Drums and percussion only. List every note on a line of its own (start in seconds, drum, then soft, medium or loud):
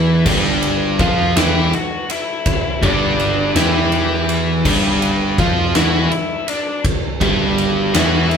0.26 kick loud
0.26 crash loud
0.63 ride medium
0.99 kick loud
0.99 ride medium
1.37 snare loud
1.37 ride loud
1.73 ride medium
2.10 ride medium
2.46 kick loud
2.46 ride loud
2.83 kick loud
2.83 ride medium
3.20 ride medium
3.56 snare loud
3.56 ride loud
3.92 ride medium
4.29 ride medium
4.65 kick loud
4.65 crash loud
5.02 ride medium
5.38 kick loud
5.38 ride medium
5.75 snare loud
5.75 ride loud
6.12 ride medium
6.48 ride medium
6.85 kick loud
6.85 ride loud
7.21 kick loud
7.21 ride medium
7.58 ride medium
7.94 snare loud
7.94 ride loud
8.31 ride medium